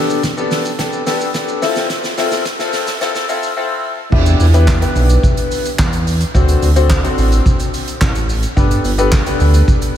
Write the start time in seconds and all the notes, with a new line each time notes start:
Already playing: B3 D4 G4 A4
0.10 shaker
0.23 kick, snare, closed hi-hat, shaker
0.37 B3 D4 G4 A4, shaker
0.51 snare, open hi-hat, shaker
0.65 shaker
0.79 B3 D4 G4 A4, kick, snare, closed hi-hat, shaker
0.93 shaker
1.06 B3 D4 G4 A4, snare, open hi-hat, shaker
1.21 shaker
1.34 B3 D4 G4 A4, kick, snare, closed hi-hat, shaker
1.48 shaker
1.62 C4 E4 F4 A4, snare, open hi-hat, shaker
1.76 snare, shaker
1.90 kick, snare, closed hi-hat, shaker
2.04 snare, shaker
2.17 C4 E4 F4 A4, snare, open hi-hat, shaker
2.31 snare, shaker
2.45 kick, snare, closed hi-hat, shaker
2.59 C4 E4 F4 A4, snare, shaker
2.73 snare, open hi-hat, shaker
2.87 snare, shaker
3.01 C4 E4 F4 A4, snare, closed hi-hat, shaker
3.15 snare, shaker
3.29 C4 E4 F4 A4, open hi-hat, shaker
3.43 shaker
3.57 C4 E4 F4 A4
4.12 E2 B3 D4 E4 G4 B4, kick, crash
4.26 closed hi-hat, shaker
4.40 E2, open hi-hat, shaker
4.54 B3 D4 E4 G4 B4, closed hi-hat, shaker
4.68 kick, snare, clap, shaker
4.81 B3 D4 E4 G4 B4, closed hi-hat, shaker
4.96 B1, open hi-hat, shaker
5.10 closed hi-hat, shaker
5.23 kick, shaker
5.37 closed hi-hat, shaker
5.51 open hi-hat, shaker
5.65 closed hi-hat, shaker
5.79 E2, kick, snare, clap, shaker
5.93 closed hi-hat, shaker
6.07 open hi-hat, shaker
6.21 closed hi-hat, shaker
6.34 D2 C4 D4 F#4 A4 C5, kick, shaker
6.49 closed hi-hat, shaker
6.62 D2, open hi-hat, shaker
6.76 C4 D4 F#4 A4 C5, closed hi-hat, shaker
6.90 kick, snare, clap, shaker
7.04 C4 D4 F#4 A4 C5, closed hi-hat, shaker
7.18 A1, open hi-hat, shaker
7.32 closed hi-hat, shaker
7.46 kick, shaker
7.60 closed hi-hat, shaker
7.74 open hi-hat, shaker
7.88 closed hi-hat, shaker
8.01 A1, kick, snare, clap, shaker
8.15 closed hi-hat, shaker
8.29 open hi-hat, shaker
8.43 closed hi-hat, shaker
8.56 G1 B3 D4 G4 A4 B4, kick, shaker
8.71 closed hi-hat, shaker
8.84 G1, open hi-hat, shaker
8.98 B3 D4 G4 A4 B4, closed hi-hat, shaker
9.12 kick, snare, clap, shaker
9.26 B3 D4 G4 A4 B4, closed hi-hat, shaker
9.40 D2, open hi-hat, shaker
9.54 closed hi-hat, shaker
9.68 kick, shaker
9.82 closed hi-hat, shaker